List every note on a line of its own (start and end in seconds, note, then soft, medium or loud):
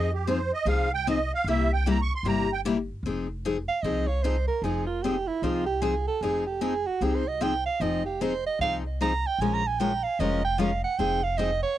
0.00 0.50 F2 medium
0.00 0.12 D#5 medium
0.14 0.27 G4 medium
0.27 0.38 F3 medium
0.27 0.38 C4 medium
0.27 0.39 D#4 medium
0.27 0.39 G#4 loud
0.27 0.52 C5 medium
0.54 0.67 D#5 loud
0.65 1.29 C2 medium
0.65 0.87 F3 medium
0.65 0.87 C4 medium
0.65 0.87 D#4 medium
0.65 0.88 G#4 medium
0.65 0.91 F5 medium
0.94 1.07 G5 loud
1.07 1.18 F3 medium
1.07 1.18 C4 medium
1.07 1.18 D#4 loud
1.07 1.18 G#4 medium
1.07 1.32 D#5 medium
1.35 1.47 F5 loud
1.44 2.08 C2 medium
1.44 1.68 C3 medium
1.44 1.68 G3 medium
1.44 1.68 A#3 medium
1.44 1.68 G4 medium
1.48 1.68 E4 medium
1.48 1.72 E5 medium
1.73 1.86 G5 loud
1.86 1.97 C3 medium
1.86 1.97 G3 medium
1.86 1.97 A#3 medium
1.86 1.97 E4 medium
1.86 1.98 G4 medium
1.86 2.00 A#5 medium
2.02 2.13 C#6 loud
2.15 2.27 C6 medium
2.23 2.88 G1 medium
2.23 2.46 C3 medium
2.23 2.46 G3 medium
2.23 2.47 A#3 medium
2.23 2.46 E4 medium
2.23 2.47 G4 medium
2.29 2.51 A#5 medium
2.53 2.61 G5 medium
2.65 2.76 C3 medium
2.65 2.77 G3 loud
2.65 2.76 A#3 medium
2.65 2.77 E4 loud
2.65 2.77 G4 medium
3.03 3.67 F1 medium
3.03 3.26 F3 medium
3.03 3.26 C4 medium
3.03 3.27 D#4 medium
3.03 3.27 G#4 medium
3.45 3.56 F3 medium
3.45 3.56 C4 medium
3.45 3.56 D#4 medium
3.45 3.56 G#4 medium
3.68 3.84 F5 medium
3.83 4.47 C2 medium
3.83 4.05 F3 medium
3.83 4.05 C4 medium
3.83 4.06 D#4 medium
3.83 4.06 G#4 medium
3.83 4.08 D#5 medium
4.07 4.25 C#5 medium
4.23 4.35 F3 medium
4.23 4.35 C4 medium
4.23 4.35 D#4 medium
4.23 4.36 G#4 loud
4.23 4.47 C5 medium
4.48 4.65 A#4 medium
4.62 5.26 F1 medium
4.62 4.85 F3 medium
4.62 4.85 C4 medium
4.62 4.85 D#4 medium
4.62 4.86 G#4 medium
4.62 4.85 G#4 medium
4.87 5.04 F4 medium
5.03 5.15 F3 medium
5.03 5.15 C4 medium
5.03 5.15 D#4 medium
5.03 5.29 G4 medium
5.03 5.15 G#4 medium
5.28 5.45 E4 medium
5.42 6.06 C2 medium
5.42 5.64 F3 medium
5.42 5.64 C4 medium
5.42 5.64 D#4 medium
5.42 5.66 F4 medium
5.42 5.65 G#4 medium
5.66 5.84 G4 medium
5.82 5.93 F3 medium
5.82 5.93 C4 medium
5.82 5.94 D#4 medium
5.82 6.07 G#4 medium
5.82 5.94 G#4 medium
6.08 6.23 A4 medium
6.21 6.85 F1 medium
6.21 6.44 F3 medium
6.21 6.43 C4 medium
6.21 6.44 D#4 medium
6.21 6.46 G#4 medium
6.21 6.44 G#4 medium
6.47 6.64 G4 medium
6.61 6.73 F3 medium
6.61 6.73 C4 medium
6.61 6.73 D#4 medium
6.61 6.73 G#4 medium
6.61 6.88 G#4 medium
6.87 7.05 F#4 medium
7.01 7.65 C2 medium
7.01 7.22 F3 medium
7.01 7.23 C4 medium
7.01 7.23 D#4 medium
7.01 7.17 G4 medium
7.01 7.23 G#4 medium
7.15 7.30 C5 medium
7.28 7.44 D#5 medium
7.41 7.52 F3 medium
7.41 7.52 C4 medium
7.41 7.53 D#4 medium
7.41 7.53 G#4 loud
7.41 7.65 G5 loud
7.66 7.83 F5 medium
7.80 8.44 F1 medium
7.80 8.02 F3 medium
7.80 8.02 C4 medium
7.80 8.02 D#4 medium
7.80 8.02 G#4 medium
7.80 8.05 D#5 medium
8.05 8.23 G4 medium
8.21 8.32 F3 medium
8.21 8.32 C4 medium
8.21 8.32 D#4 medium
8.21 8.32 G#4 loud
8.21 8.46 C5 medium
8.46 8.60 D#5 medium
8.59 9.23 C2 medium
8.59 8.82 F3 medium
8.59 8.82 C4 medium
8.59 8.82 D#4 medium
8.59 8.83 G#4 medium
8.59 8.76 F5 medium
9.01 9.11 F3 medium
9.01 9.12 C4 medium
9.01 9.12 D#4 medium
9.01 9.12 G#4 medium
9.01 9.28 A#5 medium
9.27 9.43 G5 loud
9.38 10.02 A#1 medium
9.38 9.61 F3 medium
9.38 9.62 G#3 medium
9.38 9.62 C#4 medium
9.38 9.62 F4 medium
9.38 9.62 A#4 medium
9.38 9.55 G#5 medium
9.54 9.69 A#5 loud
9.67 9.81 G#5 medium
9.79 9.91 F3 medium
9.79 9.91 G#3 medium
9.79 9.91 C#4 medium
9.79 9.91 F4 medium
9.79 9.91 A#4 medium
9.79 10.05 G5 medium
10.03 10.21 F5 medium
10.19 10.82 F1 medium
10.19 10.40 F3 medium
10.19 10.41 G#3 medium
10.19 10.41 C#4 medium
10.19 10.41 F4 medium
10.19 10.41 A#4 medium
10.19 10.44 D#5 medium
10.45 10.61 G5 loud
10.58 10.70 F3 medium
10.58 10.70 G#3 medium
10.58 10.70 C#4 medium
10.58 10.70 F4 medium
10.58 10.70 A#4 loud
10.58 10.83 F5 medium
10.84 11.00 F#5 medium
10.98 11.62 F1 medium
10.98 11.20 F3 medium
10.98 11.20 C4 medium
10.98 11.20 D#4 medium
10.98 11.20 G#4 medium
10.98 11.25 G5 loud
11.23 11.39 F5 medium
11.38 11.49 F3 medium
11.38 11.50 C4 medium
11.38 11.50 D#4 medium
11.38 11.50 G#4 medium
11.38 11.62 D#5 medium
11.63 11.78 C#5 medium